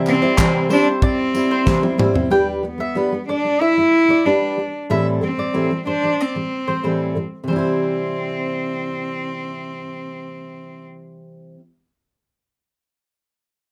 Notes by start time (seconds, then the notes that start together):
Already playing: C3 E3 G3 C4 E4 C5
0.06 C4, clap, tambourine
0.22 G3 C4 E4 C5 D5
0.37 C3 E3 G3 C4 E4 C5, kick, clap
0.69 G3 C4 D4 E4 C5, tambourine
1.02 C4 D5, kick
1.34 G3 C4 E4 C5, tambourine
1.51 C5
1.66 C3 E3 G3 C4 E4 C5, kick, snare, clap
1.82 G3 C4 E4 C5, high tom
1.98 G3 C4 E4 C5, mid tom
2.14 G3 C4 E4 C5, floor tom
2.30 G3 D4 G4 B4 G5
2.63 G3 B3 D4
2.78 G3 D4 E5
2.95 G3 D4 G4 B4
3.12 G3
3.29 G3 D4 D5
3.45 G3 D4
3.61 E4 E5
3.77 G3 D4
4.09 G3 D4 D5
4.25 G3 D4 G4 B4
4.58 G3 D4
4.90 A2 E3 G3 C4 E4 A4 E5
5.21 A2 E3 G3 C4
5.37 A2 E3 G3 D5
5.53 A2 E3 G3 C4 E4 A4
5.71 A2 E3 G3
5.85 A2 E3 G3 D4 C5
6.02 A2 E3 G3
6.21 C4 D5
6.35 A2 E3 G3
6.67 A2 E3 G3 C5
6.83 A2 E3 G3 C4 E4 A4
7.15 A2 E3 G3
7.44 C3
7.48 E3 G3 C4 C5
7.53 C4 E4
7.58 C5